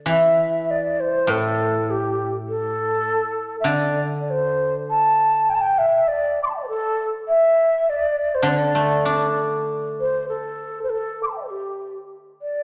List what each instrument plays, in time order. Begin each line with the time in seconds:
0.06 guzheng E3
0.10 xiao E5
0.71 xiao D5
1.00 xiao C5
1.27 guzheng A2, xiao A4
1.90 xiao G4
2.49 xiao A4
3.60 guzheng D3, xiao E5
3.69 xiao D5
4.21 xiao D5
4.30 xiao C5
4.90 xiao A5
5.50 xiao G5
5.54 xiao A5
5.61 xiao G5
5.78 xiao E5
6.08 xiao D5
6.43 xiao C6 D6
6.50 xiao A5
6.54 xiao E5 G5
6.60 xiao D5
6.64 xiao C5
6.68 xiao A4
7.28 xiao E5
7.90 xiao D5
8.35 xiao C5
8.43 guzheng D3
8.49 xiao D5
8.75 guzheng A3
9.05 guzheng D4
10.00 xiao C5
10.29 xiao A4
10.84 xiao C5
10.89 xiao A4
11.23 xiao C6 D6
11.30 xiao G5 A5
11.38 xiao D5 E5
11.44 xiao A4 C5
11.49 xiao G4
12.42 xiao D5